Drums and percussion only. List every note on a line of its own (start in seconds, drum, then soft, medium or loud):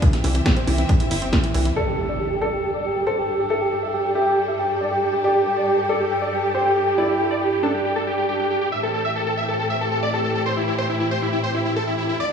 0.02 kick loud
0.02 closed hi-hat medium
0.13 snare soft
0.13 closed hi-hat medium
0.24 open hi-hat loud
0.24 high conga medium
0.35 closed hi-hat medium
0.46 kick loud
0.46 snare loud
0.46 closed hi-hat medium
0.57 closed hi-hat medium
0.68 open hi-hat medium
0.68 high conga medium
0.78 closed hi-hat medium
0.89 kick loud
0.89 closed hi-hat medium
1.00 closed hi-hat medium
1.11 open hi-hat loud
1.22 closed hi-hat medium
1.33 kick loud
1.33 snare loud
1.33 closed hi-hat soft
1.44 closed hi-hat medium
1.54 open hi-hat medium
1.65 closed hi-hat medium